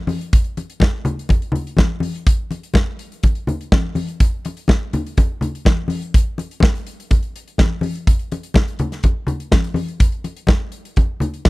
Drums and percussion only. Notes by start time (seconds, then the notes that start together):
0.07 open hi-hat, high conga
0.21 closed hi-hat
0.33 kick, closed hi-hat
0.44 closed hi-hat
0.57 closed hi-hat, muted conga
0.70 closed hi-hat
0.80 kick, snare, high conga
1.05 closed hi-hat, low conga
1.19 closed hi-hat
1.29 kick, closed hi-hat, muted conga
1.42 closed hi-hat
1.52 closed hi-hat, low conga
1.67 closed hi-hat
1.77 kick, snare, high conga
2.00 open hi-hat, high conga
2.15 closed hi-hat
2.27 kick, closed hi-hat
2.51 closed hi-hat, muted conga
2.63 closed hi-hat
2.74 kick, snare, high conga
2.99 closed hi-hat
3.12 closed hi-hat
3.23 kick, closed hi-hat, muted conga
3.35 closed hi-hat
3.47 closed hi-hat, low conga
3.61 closed hi-hat
3.72 kick, snare, high conga
3.95 open hi-hat, high conga
4.08 closed hi-hat
4.20 kick, closed hi-hat, muted conga
4.45 closed hi-hat, muted conga
4.57 closed hi-hat
4.68 kick, snare, high conga
4.93 closed hi-hat, low conga
5.06 closed hi-hat
5.17 kick, closed hi-hat, muted conga
5.41 closed hi-hat, low conga
5.55 closed hi-hat
5.65 kick, snare, high conga
5.88 open hi-hat, high conga
6.02 closed hi-hat
6.14 kick, closed hi-hat
6.38 closed hi-hat, muted conga
6.51 closed hi-hat
6.60 kick, snare, high conga
6.75 closed hi-hat
6.87 closed hi-hat
7.00 closed hi-hat
7.11 kick, closed hi-hat, muted conga
7.23 closed hi-hat
7.36 closed hi-hat
7.48 closed hi-hat
7.58 kick, snare, high conga
7.81 open hi-hat, high conga
7.95 closed hi-hat
8.07 kick, closed hi-hat, muted conga
8.19 closed hi-hat
8.32 closed hi-hat, muted conga
8.43 closed hi-hat
8.54 kick, snare, high conga
8.68 closed hi-hat
8.79 closed hi-hat, low conga
8.92 snare, closed hi-hat
9.03 kick, closed hi-hat, muted conga
9.27 closed hi-hat, low conga
9.40 closed hi-hat
9.52 kick, snare, high conga
9.64 closed hi-hat
9.74 open hi-hat, high conga
9.88 closed hi-hat
10.00 kick, closed hi-hat, muted conga
10.12 closed hi-hat
10.24 closed hi-hat, muted conga
10.37 closed hi-hat
10.47 kick, snare, high conga
10.72 closed hi-hat
10.85 closed hi-hat
10.96 kick, closed hi-hat, muted conga
11.20 closed hi-hat, low conga
11.34 closed hi-hat
11.45 kick, snare, high conga